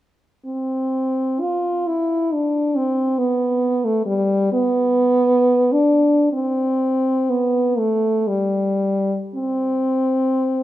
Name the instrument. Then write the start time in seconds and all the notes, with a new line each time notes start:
french horn
0.46 C4
1.41 F4
1.87 E4
2.33 D4
2.76 C4
3.18 B3
3.85 A3
4.06 G3
4.53 B3
5.72 D4
6.32 C4
7.30 B3
7.78 A3
8.28 G3
9.35 C4